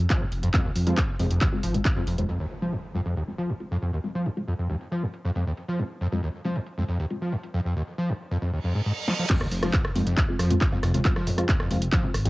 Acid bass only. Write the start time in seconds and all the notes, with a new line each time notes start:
0.10 F3
0.21 D#2
0.43 F2
0.54 F2
0.65 D#2
0.87 F3
0.98 D#2
1.20 F2
1.31 F2
1.41 D#2
1.63 F3
1.74 D#2
1.96 F2
2.07 F2
2.18 D#2
2.29 F2
2.40 D#2
2.62 F3
2.73 D#2
2.95 F2
3.06 F2
3.16 D#2
3.38 F3
3.50 D#2
3.71 F2
3.82 F2
3.93 D#2
4.15 F3
4.26 D#2
4.48 F2
4.59 F2
4.70 D#2
4.92 F3
5.03 D#2
5.25 F2
5.35 F2
5.47 D#2
5.68 F3
5.79 D#2
6.01 F2
6.12 F2
6.23 D#2
6.45 F3
6.56 D#2
6.78 F2
6.89 F2
7.00 D#2
7.22 F3
7.32 D#2
7.54 F2
7.66 F2
7.76 D#2
7.98 F3
8.09 D#2
8.31 F2
8.42 F2
8.53 D#2
8.64 F2
8.75 G#2
8.86 G#2
9.08 F3
9.19 F3
9.30 F2
9.41 D#2
9.63 F3
9.74 D#2
9.95 F2
10.06 F2
10.17 D#2
10.39 F3
10.50 D#2
10.72 F2
10.83 F2
10.94 D#2
11.16 F3
11.27 D#2
11.49 F2
11.60 F2
11.70 D#2
11.92 F3
12.04 D#2
12.25 F2